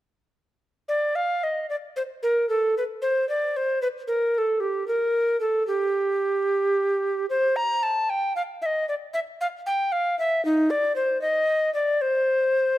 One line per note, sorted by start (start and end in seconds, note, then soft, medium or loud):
0.88 1.17 D5 medium
1.16 1.45 F5 medium
1.44 1.69 D#5 soft
1.70 1.76 D5 medium
1.96 2.02 C5 soft
2.23 2.48 A#4 medium
2.49 2.75 A4 soft
2.77 2.83 B4 medium
3.02 3.28 C5 medium
3.29 3.58 D5 medium
3.57 3.81 C5 medium
3.82 3.88 B4 medium
4.08 4.35 A#4 medium
4.35 4.62 A4 medium
4.35 4.39 A#4 medium
4.60 4.87 G4 medium
4.88 5.39 A#4 medium
5.41 5.66 A4 medium
5.67 7.26 G4 medium
7.30 7.58 C5 medium
7.56 7.84 A#5 medium
7.83 8.11 A5 medium
8.10 8.35 G5 medium
8.36 8.42 F5 medium
8.62 8.67 E5 medium
8.66 8.87 D#5 medium
8.89 8.95 D5 medium
9.14 9.20 E5 medium
9.41 9.47 F5 medium
9.66 9.94 G5 medium
9.92 10.18 F5 medium
10.19 10.44 E5 medium
10.45 10.72 D#4 medium
10.70 10.95 D5 medium
10.96 11.21 C5 medium
11.21 11.73 D#5 medium
11.74 12.03 D5 medium
12.01 12.78 C5 medium